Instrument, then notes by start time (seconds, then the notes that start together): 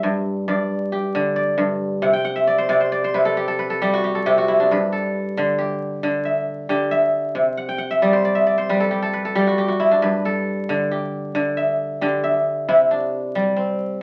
kora
Already playing: D4 E4 G4 E5
0.03 G2
0.48 G2 D5
0.92 G4
1.15 D3
1.36 D5
1.58 G2
2.02 C3 F#5
2.13 G5
2.25 F#5
2.36 E5
2.47 D5
2.58 C5
2.69 C3 D5
2.81 C5
2.92 D5
3.04 C5
3.14 C3 B4
3.25 A4
3.37 G4
3.48 A4
3.59 B4
3.70 A4
3.82 G3 G4
3.93 F#4
4.04 G4
4.15 A4
4.26 C3 G4
4.38 F#4
4.48 E4
4.60 D4
4.71 G2 B4
4.92 A4
5.37 D3
5.59 G4
6.03 D3
6.25 E5
6.69 D3 G4
6.91 E5
7.35 C3
7.57 F#5
7.69 G5
7.78 F#5
7.91 E5
8.02 G3 D5
8.13 C5
8.25 D5
8.35 E5
8.47 D5
8.58 C5
8.69 G3 B4
8.80 A4
8.91 G4
9.02 A4
9.13 B4
9.25 A4
9.35 G3 G4
9.47 F#4
9.58 G4
9.68 F#4
9.80 E4
9.91 D4
10.02 G2 B4
10.25 A4
10.69 D3
10.91 G4
11.35 D3
11.57 E5
12.01 D3 G4
12.24 E5
12.69 C3 E4
12.91 D4
13.35 G3
13.57 C4